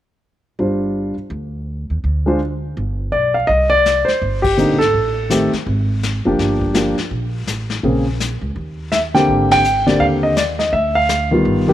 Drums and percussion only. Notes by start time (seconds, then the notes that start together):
3.49 brush sweep, kick
3.86 snare, hi-hat pedal
4.08 snare
4.21 brush sweep, kick
4.44 kick, ride
4.58 hi-hat pedal
4.81 snare
4.94 brush sweep, kick
5.30 snare, hi-hat pedal
5.53 snare
5.66 brush sweep, kick
6.03 snare, hi-hat pedal
6.39 brush sweep, kick, snare
6.62 kick
6.75 snare, hi-hat pedal
6.98 snare
7.11 brush sweep, kick
7.47 snare, hi-hat pedal
7.70 snare
7.84 brush sweep, kick
8.20 snare, hi-hat pedal
8.56 brush sweep, kick
8.92 snare, hi-hat pedal
9.15 snare
9.28 brush sweep, kick
9.51 snare, ride
9.64 hi-hat pedal
9.88 snare
10.00 brush sweep, kick
10.37 snare, hi-hat pedal
10.59 snare
10.73 brush sweep, kick
11.09 snare, hi-hat pedal
11.45 brush sweep, kick